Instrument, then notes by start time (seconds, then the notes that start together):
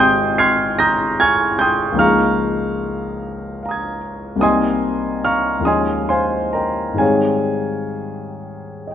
grand piano
Already playing: G#1 G#3 C4 D#4 G4 D#5 G#5
0.00 G5 C6 D#6 G6
0.38 C6 F6 G#6 C7
0.79 A#5 D#6 G6 A#6
1.20 G#5 C#6 F6 G#6
1.59 G5 C6 D#6 G6
1.92 C#2 F3 A#3
1.97 D#4 G#4 F5 A#5 C#6 F6
3.63 F5 A#5
3.69 D#6 G#6
4.36 C2 G3 A#3
4.40 C4 D#4 D#5 G#5 C6 D#6
5.25 F5 A#5 C#6 F6
5.59 D#2 F3 G#3
5.64 C#4 D#4 D#5 G#5 C6 D#6
6.09 C5 F5 G#5 C6
6.53 A#4 D#5 G5 A#5
6.92 G#2 D#3 G3
6.97 C4 D#4 G#4 C#5 F5 G#5
8.87 D#5 G5